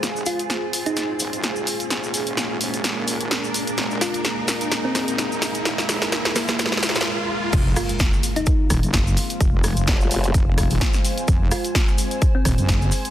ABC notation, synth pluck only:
X:1
M:4/4
L:1/16
Q:"Swing 16ths" 1/4=128
K:Fm
V:1 name="Synth pluck"
z2 F z4 E3 z6 | z16 | z2 F z6 C C z4 z | z6 B, B, z8 |
z2 F z4 E3 z6 | z16 | z2 F z6 C C z4 z |]